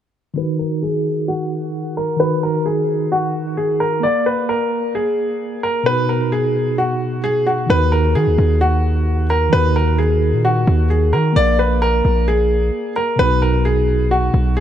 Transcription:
0.34 tine electric piano D#3 D#4, grand piano B4
0.38 tine electric piano F#4 A#4
0.59 grand piano A#4
0.83 grand piano G#4
1.28 grand piano F#4
1.97 grand piano A#4
2.17 tine electric piano D#3 D#4, grand piano B4
2.21 tine electric piano F#4 A#4
2.43 grand piano A#4
2.66 grand piano G#4
3.12 grand piano F#4
3.57 grand piano G#4
3.80 grand piano A#4
4.00 tine electric piano A#3 A#4, grand piano D5
4.05 tine electric piano D5 F5
4.26 grand piano B4
4.49 grand piano A#4
4.95 grand piano G#4
5.63 grand piano A#4
5.83 tine electric piano B2 B3, grand piano B4
5.88 tine electric piano D#4 F#4
6.09 grand piano A#4
6.32 grand piano G#4
6.78 grand piano F#4
7.24 grand piano G#4
7.47 grand piano F#4
7.66 808-style bass D#2, tine electric piano D#3 D#4, grand piano B4
7.71 tine electric piano F#4 A#4
7.92 grand piano A#4
8.15 808-style bass D#3, grand piano G#4
8.27 808-style bass D#2
8.38 808-style bass D#2
8.61 grand piano F#4
9.30 grand piano A#4
9.50 808-style bass D#2, tine electric piano D#3 D#4, grand piano B4
9.54 tine electric piano F#4 A#4
9.76 grand piano A#4
9.98 grand piano G#4
10.33 808-style bass A#2
10.45 grand piano F#4
10.67 808-style bass D#2
10.90 grand piano G#4
11.13 808-style bass D#3, grand piano A#4
11.33 808-style bass A#1, tine electric piano A#3 A#4, grand piano D5
11.37 tine electric piano D5 F5
11.59 grand piano B4
11.82 grand piano A#4
12.05 808-style bass A#1
12.28 grand piano G#4
12.96 grand piano A#4
13.16 808-style bass B1, tine electric piano B2 B3, grand piano B4
13.21 tine electric piano D#4 F#4
13.42 grand piano A#4
13.65 grand piano G#4
14.11 grand piano F#4
14.34 808-style bass B1
14.57 grand piano G#4

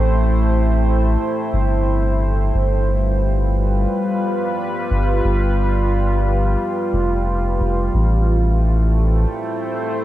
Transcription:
Already playing: sub bass A1, ambient pad A3 E4 C5 G5
1.53 sub bass G1
2.54 sub bass G1, ambient pad G3
2.61 ambient pad F4
2.69 ambient pad B4
4.90 sub bass G1
5.24 sub bass G1
6.93 sub bass F1
7.60 sub bass F1
7.94 sub bass A1, ambient pad A3
8.14 ambient pad E4
8.56 ambient pad G5
8.67 ambient pad C5

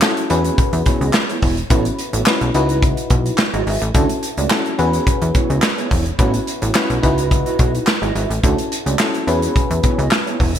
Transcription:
0.02 fm electric piano C#4 E4 F#4 A4, snare, clap
0.17 muted clean electric guitar stroke, closed hi-hat
0.30 analog synth bass E2, clean electric guitar B3 E4 G#4 C#5, fm electric piano C#4 F#4 G#4 B4, closed hi-hat
0.45 clean electric guitar B3 E4 G#4 C#5, closed hi-hat
0.58 muted clean electric guitar stroke, kick, closed hi-hat
0.73 analog synth bass E2, muted clean electric guitar stroke, closed hi-hat
0.86 clean electric guitar B3 E4 G#4 C#5, kick, closed hi-hat
1.01 analog synth bass C#2, clean electric guitar B3 E4 G#4 D#5, closed hi-hat
1.13 muted clean electric guitar stroke, snare, clap
1.29 clean electric guitar B3 E4 G#4 C#5, closed hi-hat
1.42 analog synth bass E1, clean electric guitar B3 E4 G#4 C#5, kick, open hi-hat
1.57 muted clean electric guitar stroke, closed hi-hat
1.70 analog synth bass A1, clean electric guitar B3 F#4 A4 C#5, fm electric piano C#4 E4 F#4 B4, kick, closed hi-hat
1.85 muted clean electric guitar stroke, closed hi-hat
1.99 muted clean electric guitar stroke, closed hi-hat
2.13 analog synth bass A1, clean electric guitar B3 F#4 A4 C#5, closed hi-hat
2.26 fm electric piano C#4 E4 F#4 B4, muted clean electric guitar stroke, snare, clap
2.41 analog synth bass B1, muted clean electric guitar stroke, closed hi-hat
2.54 analog synth bass C#2, fm electric piano D#4 E4 F#4 B4, clean electric guitar E4 F#4 B4 E5, closed hi-hat
2.69 clean electric guitar E4 F#4 B4 D#5, closed hi-hat
2.82 muted clean electric guitar stroke, kick, closed hi-hat
2.97 muted clean electric guitar stroke, closed hi-hat
3.10 analog synth bass B1, kick, closed hi-hat
3.26 muted clean electric guitar stroke, closed hi-hat
3.38 muted clean electric guitar stroke, snare, clap
3.54 analog synth bass G#1, clean electric guitar E4 F#4 B4 D#5, closed hi-hat
3.67 analog synth bass G#1, clean electric guitar E4 F#4 B4 E5, open hi-hat
3.82 analog synth bass A1, muted clean electric guitar stroke, closed hi-hat
3.94 analog synth bass D2, clean electric guitar A3 D4 F#4 C#5, fm electric piano C#4 E4 F#4 A4, kick, closed hi-hat
4.09 muted clean electric guitar stroke, closed hi-hat
4.23 muted clean electric guitar stroke, closed hi-hat
4.37 analog synth bass C#2, clean electric guitar A3 D4 F#4 D5, closed hi-hat
4.50 fm electric piano C#4 E4 F#4 A4, snare, clap
4.66 muted clean electric guitar stroke, closed hi-hat
4.78 analog synth bass E2, clean electric guitar B3 E4 G#4 C#5, fm electric piano C#4 F#4 G#4 B4, closed hi-hat
4.93 clean electric guitar B3 E4 G#4 C#5, closed hi-hat
5.07 muted clean electric guitar stroke, kick, closed hi-hat
5.22 analog synth bass E2, muted clean electric guitar stroke, closed hi-hat
5.35 clean electric guitar B3 E4 G#4 C#5, kick, closed hi-hat
5.50 analog synth bass C#2, clean electric guitar B3 E4 G#4 D#5, closed hi-hat
5.62 muted clean electric guitar stroke, snare, clap
5.78 clean electric guitar B3 E4 G#4 C#5, closed hi-hat
5.91 analog synth bass E1, clean electric guitar B3 E4 G#4 C#5, kick, open hi-hat
6.06 muted clean electric guitar stroke, closed hi-hat
6.19 analog synth bass A1, clean electric guitar B3 E4 F#4 C#5, fm electric piano C#4 E4 F#4 B4, kick, closed hi-hat
6.34 muted clean electric guitar stroke, closed hi-hat
6.47 muted clean electric guitar stroke, closed hi-hat
6.62 analog synth bass A1, clean electric guitar B3 E4 F#4 C#5, closed hi-hat
6.74 fm electric piano C#4 E4 F#4 B4, snare, clap
6.90 analog synth bass B1, muted clean electric guitar stroke, closed hi-hat
7.02 analog synth bass C#2, fm electric piano D#4 E4 F#4 B4, clean electric guitar E4 F#4 B4 E5, kick, closed hi-hat
7.18 clean electric guitar E4 F#4 B4 D#5, closed hi-hat
7.31 muted clean electric guitar stroke, kick, closed hi-hat
7.46 clean electric guitar E4 F#4 B4 D#5, closed hi-hat
7.59 analog synth bass B1, clean electric guitar E4 F#4 B4 D#5, kick, closed hi-hat
7.74 muted clean electric guitar stroke, closed hi-hat
7.87 muted clean electric guitar stroke, snare, clap
8.02 analog synth bass G#1, clean electric guitar E4 F#4 B4 D#5, closed hi-hat
8.15 analog synth bass G#1, clean electric guitar E4 F#4 B4 E5, closed hi-hat
8.30 analog synth bass A1, muted clean electric guitar stroke, closed hi-hat
8.43 analog synth bass D2, clean electric guitar A3 D4 F#4 C#5, fm electric piano C#4 E4 F#4 A4, kick, closed hi-hat
8.58 muted clean electric guitar stroke, closed hi-hat
8.71 muted clean electric guitar stroke, closed hi-hat
8.86 analog synth bass C#2, clean electric guitar A3 D4 F#4 D5, closed hi-hat
8.99 fm electric piano C#4 E4 F#4 A4, snare, clap
9.14 muted clean electric guitar stroke, closed hi-hat
9.27 analog synth bass E2, clean electric guitar B3 E4 G#4 C#5, fm electric piano C#4 F#4 G#4 B4, closed hi-hat
9.42 clean electric guitar B3 E4 G#4 C#5, closed hi-hat
9.56 muted clean electric guitar stroke, kick, closed hi-hat
9.70 analog synth bass E2, muted clean electric guitar stroke, closed hi-hat
9.83 clean electric guitar B3 E4 G#4 C#5, kick, closed hi-hat
9.98 analog synth bass C#2, clean electric guitar B3 E4 G#4 D#5, closed hi-hat
10.11 snare, clap
10.26 clean electric guitar B3 E4 G#4 C#5, closed hi-hat
10.40 analog synth bass E1, clean electric guitar B3 E4 G#4 C#5, kick, open hi-hat
10.55 muted clean electric guitar stroke, closed hi-hat

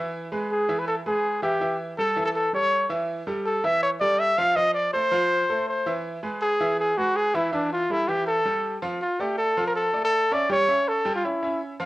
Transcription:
Already playing: grand piano E3 E4 E5
0.32 grand piano G#3 G#4 B4
0.52 trumpet G#4
0.69 grand piano E3 E4 E5
0.79 trumpet B4
0.88 trumpet A4
1.06 grand piano G#3 G#4 B4, trumpet G#4
1.42 grand piano E3 E4 E5, trumpet G4
1.61 grand piano E3 E4 E5
1.98 grand piano G3 G4 A4, trumpet A4
2.16 grand piano E3 E4 E5
2.25 trumpet A4
2.35 trumpet A4
2.53 grand piano G3 G4 A4, trumpet C#5
2.89 grand piano E3 E4 E5
3.27 grand piano G3 G4 A4
3.46 trumpet A4
3.64 grand piano E3 E4 E5, trumpet E5
3.83 trumpet C#5
4.00 grand piano G3 G4 A4, trumpet D5
4.19 trumpet E5
4.38 grand piano F3 F4 F5, trumpet F5
4.56 grand piano F3 F4 F5, trumpet D#5
4.74 trumpet D5
4.93 grand piano A3 A4 C5, trumpet C5
5.11 grand piano F3 F4 F5
5.50 grand piano A3 A4 C5
5.68 trumpet C5
5.86 grand piano E3 E4 E5
6.23 grand piano G#3 G#4 B4
6.42 trumpet G#4
6.60 grand piano E3 E4 E5
6.80 trumpet G#4
6.98 grand piano G#3 G#4 B4, trumpet F#4
7.17 trumpet G#4
7.34 grand piano E3 E4 E5, trumpet E4
7.52 grand piano E3 E4 E5, trumpet D4
7.73 trumpet F4
7.90 grand piano G3 G4 A4, trumpet E4
8.08 grand piano E3 E4 E5, trumpet G4
8.27 trumpet A4
8.46 grand piano G3 G4 A4
8.82 grand piano F3 F4 F5
9.01 trumpet F4
9.20 grand piano A3 A4 D5, trumpet G4
9.38 trumpet A4
9.57 grand piano F3 F4 F5
9.67 trumpet A#4
9.75 trumpet A4
9.93 grand piano A3 A4 D5
10.04 trumpet A4
10.31 grand piano C#4 C#5 E5, trumpet D5
10.49 grand piano G3 G4 G5, trumpet C#5
10.68 grand piano C#4 C#5 E5
10.88 trumpet A4
11.05 grand piano G3 G4 G5
11.16 trumpet F4
11.24 grand piano C#4 C#5 E5, trumpet E4
11.43 grand piano C#4 C#5 E5
11.80 grand piano F3 F4 F5

